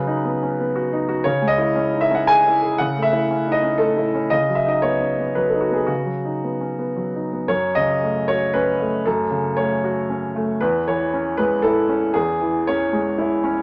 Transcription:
0.00 1.22 C#3 medium
0.00 0.18 F#3 soft
0.00 0.49 B4 medium
0.07 0.34 D#4 soft
0.25 0.52 B3 soft
0.43 0.59 C#4 soft
0.60 0.86 B3 soft
0.76 1.03 F#4 medium
0.93 1.20 D#4 medium
1.09 1.26 F#4 medium
1.24 2.74 C#3 medium
1.24 1.50 C#5 medium
1.42 1.69 G#3 soft
1.48 2.00 D#5 medium
1.58 1.86 E4 soft
1.76 2.03 C#4 medium
1.94 2.11 D#4 soft
2.01 2.14 E5 medium
2.11 2.38 C#4 soft
2.11 2.27 F#5 medium
2.27 2.55 G#4 medium
2.27 2.79 G#5 medium
2.47 2.73 E4 medium
2.62 2.79 G#4 medium
2.78 4.28 C#3 medium
2.78 3.04 F#5 medium
2.97 3.23 A3 soft
3.02 3.54 E5 medium
3.13 3.40 E4 soft
3.31 3.57 C#4 soft
3.47 3.64 D#4 soft
3.52 3.79 D#5 medium
3.63 3.90 C#4 soft
3.78 4.07 A3 soft
3.78 4.30 A4 medium
3.96 4.24 E4 soft
4.14 4.31 C#4 medium
4.30 5.85 C#3 medium
4.30 4.56 D#5 medium
4.49 4.76 F#3 soft
4.55 4.69 E5 medium
4.66 4.94 D#4 soft
4.66 4.82 D#5 medium
4.82 5.11 B3 soft
4.82 5.35 C#5 medium
5.01 5.18 C#4 soft
5.19 5.47 B3 soft
5.35 5.64 F#3 soft
5.35 5.49 B4 medium
5.48 5.62 A4 soft
5.54 5.82 D#4 soft
5.61 5.75 F#4 medium
5.71 6.00 B3 soft
5.71 5.88 G#4 soft
5.87 7.45 C#3 soft
5.87 7.22 F#4 medium
6.05 6.35 F#3 soft
6.25 6.54 D#4 soft
6.44 6.72 B3 soft
6.61 6.78 C#4 soft
6.79 7.07 B3 soft
6.96 7.25 F#3 soft
7.15 7.43 D#4 soft
7.33 7.50 B3 soft
7.48 9.02 F#2 soft
7.48 7.75 C#5 medium
7.75 8.18 C#3 soft
7.75 8.28 D#5 medium
8.02 8.44 A3 soft
8.28 8.70 F#4 soft
8.28 8.54 C#5 medium
8.54 8.96 C#4 medium
8.54 9.06 B4 medium
8.80 9.21 A3 medium
9.05 10.56 F#2 medium
9.05 9.57 A4 medium
9.31 9.72 C#3 soft
9.57 9.98 A3 soft
9.57 10.33 C#5 medium
9.84 10.24 F#4 soft
10.10 10.50 C#4 soft
10.35 10.60 A3 medium
10.61 12.11 E2 medium
10.61 10.86 B4 medium
10.88 11.28 E3 soft
10.88 11.38 C#5 medium
11.13 11.53 C#4 soft
11.37 11.79 G#3 soft
11.37 11.63 B4 medium
11.62 12.04 E4 medium
11.62 12.14 A4 medium
11.89 12.30 C#4 medium
12.14 13.62 E2 medium
12.14 12.67 G#4 medium
12.41 12.83 E3 soft
12.67 13.09 C#4 medium
12.67 13.43 C#5 medium
12.93 13.33 G#3 soft
13.18 13.58 E4 medium
13.44 13.62 C#4 medium

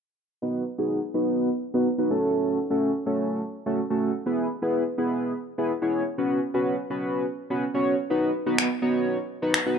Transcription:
0.42 0.63 B3 medium
0.42 0.63 D#4 medium
0.42 0.63 F#4 medium
0.42 0.63 B4 medium
0.78 0.99 B3 medium
0.78 0.99 D#4 medium
0.78 0.99 F#4 medium
0.78 0.99 G#4 medium
1.14 1.49 B3 medium
1.14 1.49 D#4 medium
1.14 1.49 F#4 medium
1.14 1.49 B4 loud
1.74 1.88 B3 medium
1.74 1.88 D#4 medium
1.74 1.88 F#4 medium
1.74 1.88 B4 medium
1.98 2.10 B3 medium
1.98 2.10 D#4 medium
1.98 2.10 F#4 medium
1.98 2.10 B4 medium
2.10 2.58 A3 medium
2.10 2.58 C#4 medium
2.10 2.58 F#4 medium
2.10 2.59 A4 loud
2.70 2.91 A3 medium
2.70 2.91 C#4 medium
2.70 2.91 F#4 medium
2.70 2.91 A4 medium
3.06 3.41 A3 medium
3.06 3.41 C#4 medium
3.06 3.41 F#4 medium
3.06 3.41 A4 medium
3.66 3.80 A3 medium
3.66 3.80 C#4 medium
3.66 3.80 F#4 medium
3.66 3.80 A4 medium
3.90 4.11 A3 medium
3.90 4.11 C#4 medium
3.90 4.11 F#4 medium
3.90 4.11 A4 medium
4.26 4.47 B3 medium
4.26 4.47 E4 medium
4.26 4.47 G#4 medium
4.26 4.47 B4 medium
4.62 4.83 B3 medium
4.62 4.83 E4 medium
4.62 4.83 G#4 medium
4.62 4.83 B4 medium
4.98 5.33 B3 medium
4.98 5.33 E4 medium
4.98 5.33 G#4 medium
4.98 5.33 B4 medium
5.58 5.72 B3 medium
5.58 5.72 E4 medium
5.58 5.72 G#4 medium
5.58 5.72 B4 medium
5.82 6.03 B3 medium
5.82 6.03 E4 medium
5.82 6.03 G#4 medium
5.82 6.03 C#5 medium
6.18 6.39 B3 medium
6.18 6.39 C#4 medium
6.18 6.39 F#4 medium
6.18 6.39 B4 medium
6.54 6.75 B3 medium
6.54 6.75 C#4 medium
6.54 6.75 F#4 medium
6.54 6.75 B4 medium
6.90 7.25 B3 medium
6.90 7.25 C#4 medium
6.90 7.25 F#4 medium
6.90 7.25 B4 medium
7.50 7.64 B3 medium
7.50 7.64 C#4 medium
7.50 7.64 F#4 medium
7.50 7.64 B4 medium
7.74 7.95 B3 medium
7.74 7.95 C#4 medium
7.74 7.95 F#4 medium
7.74 7.95 C#5 medium
8.10 8.31 B3 medium
8.10 8.31 D#4 medium
8.10 8.31 F#4 medium
8.10 8.31 B4 medium
8.46 8.67 B3 medium
8.46 8.67 D#4 medium
8.46 8.67 F#4 medium
8.46 8.67 B4 medium
8.58 finger snap medium
8.82 9.17 B3 medium
8.82 9.17 D#4 medium
8.82 9.17 F#4 medium
8.82 9.17 C#5 medium
9.42 9.56 B3 medium
9.42 9.56 D#4 medium
9.42 9.56 F#4 medium
9.42 9.56 B4 medium
9.54 finger snap loud
9.66 9.78 B3 medium
9.66 9.78 D#4 medium
9.66 9.77 F#4 medium
9.66 9.78 B4 medium

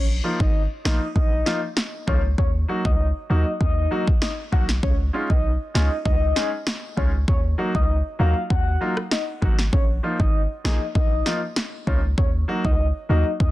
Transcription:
0.00 0.20 A#1 loud
0.24 0.37 F3 medium
0.24 0.37 A#3 medium
0.24 0.37 D#4 medium
0.24 0.37 F4 medium
0.40 0.67 G#1 medium
0.40 0.62 D#5 medium
0.40 kick medium
0.85 1.00 A#1 medium
0.85 0.98 F3 medium
0.85 0.98 A#3 medium
0.85 0.98 D#4 medium
0.85 0.98 F4 medium
0.85 1.07 D#5 medium
0.85 snare loud
1.16 1.43 A#1 loud
1.16 1.60 D#5 loud
1.16 kick medium
1.46 1.59 F3 medium
1.46 1.59 A#3 medium
1.46 1.59 D#4 medium
1.46 1.59 F4 medium
1.46 snare medium
1.77 snare loud
2.07 2.35 C#2 loud
2.07 2.20 F3 medium
2.07 2.20 A#3 medium
2.07 2.21 D#4 medium
2.07 2.21 F4 medium
2.07 2.20 C#5 medium
2.07 kick medium
2.38 2.65 D#2 loud
2.38 2.50 C#5 loud
2.38 kick loud
2.68 2.82 F#3 medium
2.68 2.82 A#3 medium
2.68 2.82 D#4 medium
2.68 2.82 F#4 medium
2.85 3.12 C#2 medium
2.85 3.07 D#5 medium
2.85 kick medium
3.30 3.45 D#2 medium
3.30 3.43 F#3 medium
3.30 3.43 A#3 medium
3.30 3.43 D#4 medium
3.30 3.43 F#4 medium
3.30 3.52 D#5 medium
3.61 3.88 D#2 loud
3.61 4.05 D#5 loud
3.61 kick loud
3.91 4.04 F#3 medium
3.91 4.04 A#3 medium
3.91 4.04 D#4 medium
3.91 4.04 F#4 medium
4.08 kick medium
4.22 4.33 D#5 medium
4.22 snare loud
4.52 4.80 B1 medium
4.52 4.65 F#3 medium
4.52 4.65 A#3 medium
4.52 4.66 D#4 medium
4.52 4.66 F#4 medium
4.52 4.64 F#5 medium
4.52 kick medium
4.69 snare medium
4.83 5.10 C#2 loud
4.83 4.95 C#5 loud
4.83 kick loud
5.13 5.26 G#3 medium
5.13 5.27 C#4 medium
5.13 5.27 D#4 medium
5.13 5.27 F4 medium
5.30 5.57 B1 medium
5.30 5.52 D#5 medium
5.30 kick medium
5.74 5.89 C#2 medium
5.74 5.88 G#3 medium
5.74 5.88 C#4 medium
5.74 5.88 D#4 medium
5.74 5.88 F4 medium
5.74 5.97 D#5 medium
5.74 snare loud
6.05 6.33 C#2 loud
6.05 6.49 D#5 loud
6.05 kick medium
6.36 6.49 G#3 medium
6.36 6.49 C#4 medium
6.36 6.49 D#4 medium
6.36 6.49 G#4 medium
6.36 snare medium
6.67 snare loud
6.97 7.25 C#2 loud
6.97 7.10 G#3 medium
6.97 7.10 C#4 medium
6.97 7.10 D#4 medium
6.97 7.11 F4 medium
6.97 7.09 C#5 medium
6.97 kick medium
7.28 7.55 D#2 loud
7.28 7.40 C#5 medium
7.28 kick loud
7.58 7.71 F#3 medium
7.58 7.71 A#3 medium
7.58 7.72 D#4 medium
7.58 7.72 F#4 medium
7.75 8.02 C#2 medium
7.75 7.97 D#5 medium
7.75 kick medium
8.19 8.34 D#2 medium
8.19 8.32 F#3 medium
8.19 8.33 A#3 medium
8.19 8.33 D#4 medium
8.19 8.33 F#4 medium
8.19 8.42 F5 medium
8.50 8.78 D#2 loud
8.50 8.95 F#5 loud
8.50 kick medium
8.81 8.94 F#3 medium
8.81 8.94 A#3 medium
8.81 8.94 D#4 medium
8.81 8.94 F4 medium
8.97 cross-stick medium
9.11 9.23 D#5 medium
9.11 snare loud
9.42 9.69 G#1 medium
9.42 9.55 F#3 medium
9.42 9.55 A#3 medium
9.42 9.55 D#4 medium
9.42 9.55 F#4 medium
9.42 9.54 F#5 medium
9.42 kick medium
9.59 snare medium
9.73 10.00 A#1 loud
9.73 9.85 C#5 loud
9.73 kick loud
10.03 10.16 F3 medium
10.03 10.16 A#3 medium
10.03 10.17 D#4 medium
10.03 10.17 F4 medium
10.20 10.47 G#1 medium
10.20 10.42 D#5 medium
10.20 kick medium
10.64 10.79 A#1 medium
10.64 10.78 F3 medium
10.64 10.78 A#3 medium
10.64 10.78 D#4 medium
10.64 10.78 G#4 medium
10.64 10.87 D#5 medium
10.64 snare loud
10.95 11.23 A#1 loud
10.95 11.39 D#5 loud
10.95 kick medium
11.25 11.39 F3 medium
11.25 11.39 A#3 medium
11.25 11.39 D#4 medium
11.25 11.39 F4 medium
11.25 snare medium
11.56 snare loud
11.87 12.14 C#2 loud
11.87 12.00 F3 medium
11.87 12.00 A#3 medium
11.87 12.00 D#4 medium
11.87 12.01 F4 medium
11.87 11.99 C#5 medium
11.87 kick medium
12.18 12.45 D#2 loud
12.18 12.30 C#5 medium
12.18 kick loud
12.48 12.61 F#3 medium
12.48 12.61 A#3 medium
12.48 12.61 D#4 medium
12.48 12.62 F#4 medium
12.65 12.92 C#2 medium
12.65 12.87 D#5 medium
12.65 kick medium
13.09 13.24 D#2 medium
13.09 13.22 F#3 medium
13.09 13.23 A#3 medium
13.09 13.23 D#4 medium
13.09 13.23 F#4 medium
13.09 13.32 D#5 medium
13.40 13.51 D#2 medium
13.40 13.51 D#5 loud
13.40 kick medium

